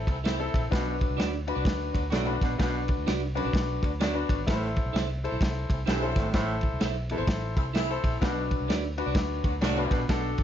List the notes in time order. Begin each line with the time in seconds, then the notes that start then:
Already playing: C4 E4 A4
0.07 C2 E3 A3 C4 E4, kick, ride
0.24 E3 A3 C4 E4 A4 C5 E5, snare, ride
0.40 C4 E4 A4
0.54 A#1, kick, ride
0.71 B1 B2 D4 F#4 B4, kick, snare, ride
1.01 kick, ride
1.09 C2
1.17 D2 D4 F#4 B4 D5, snare, ride
1.47 D4 F#4 B4, ride
1.55 C2 D4 F#4 B4 D5
1.65 D2, kick, snare, ride
1.92 D2 F#3 B3 D4 F#4, kick, ride
2.10 B1 A2 F#3 B3 D4 F#4 B4 D5, snare, ride
2.26 D4 F#4 B4
2.41 A#1 B2, kick, snare, ride
2.58 B1 B2 D4 F#4 B4, kick, snare, ride
2.88 kick, ride
2.98 D2
3.07 C2 D4 F#4 B4 D5, snare, ride
3.35 F#2 D4 F#4 B4, ride
3.44 B1 D4 F#4 B4 D5
3.53 kick, snare, ride
3.82 D2 F#3 B3 D4 F#4, kick, ride
4.00 F#3 B3 D4 F#4 B4 D5, snare, ride
4.14 D4 F#4 B4
4.29 G#1, kick, ride
4.46 A1 A2 E4 A4 B4, kick, snare, ride
4.53 C5
4.76 kick, ride
4.85 B1
4.93 C2 E4 A4 C5 E5, snare, ride
5.24 E4 A4 C5, ride
5.31 B1 E4 A4 C5 E5
5.41 C2, kick, snare, ride
5.69 C2 E3 A3 C4 E4, kick, ride
5.86 B1 G2 E3 A3 C4 E4 A4 C5 E5, snare, ride
6.02 E4 A4 C5
6.16 G#1 A2, kick, snare, ride
6.33 A1 A2 E4 A4 C5, kick, snare, ride
6.61 kick, ride
6.72 C2
6.80 B1 E4 A4 C5 E5, snare, ride
7.09 E2 E4 A4 B4, ride
7.17 A1 E4 A4 C5 E5
7.27 A1, kick, snare, ride
7.55 C2 E3 A3 C4 E4, kick, ride
7.73 E3 A3 C4 E4 A4 C5 E5, snare, ride
7.90 E4 A4 C5
8.03 A#1, kick, ride
8.21 B1 B2 D4 F#4 B4, kick, snare, ride
8.51 kick, ride
8.60 C2
8.68 D2 D4 F#4 B4 D5, snare, ride
8.98 D4 F#4 B4, ride
9.06 C2 D4 F#4 B4 D5
9.15 D2, kick, snare, ride
9.43 D2 F#3 B3 D4 F#4, kick, ride
9.61 C2 A2 F#3 B3 D4 F#4 B4 D5, snare, ride
9.77 D4 F#4 B4
9.91 A#1 B2, kick, snare, ride
10.08 B1 B2 D4 F#4 A4, kick, snare, ride
10.38 F#1, kick, ride